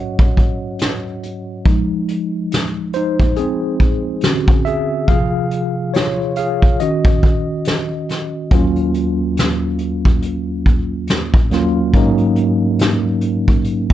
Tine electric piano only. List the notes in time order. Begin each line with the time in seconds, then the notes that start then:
Already playing: G#2 F#3 C#4 F#4 C#5 D#5 F#5
1.66 F3 G#3 D#4
2.94 D#4 C5
3.37 C4 G#4
4.23 D3 C#4 F#4
4.65 G#4 E5
5.08 C3 F3 F4 G#4 F5
5.94 F4 C#5
6.37 G#4 F5
6.80 D#3 C#4 F#4 D#5
8.51 D#2 F#3 A#3 C#4 F4
11.50 D#2 F#3 A#3 C#4
11.54 F4
11.93 G#2 F#3 A#3 C#4 D#4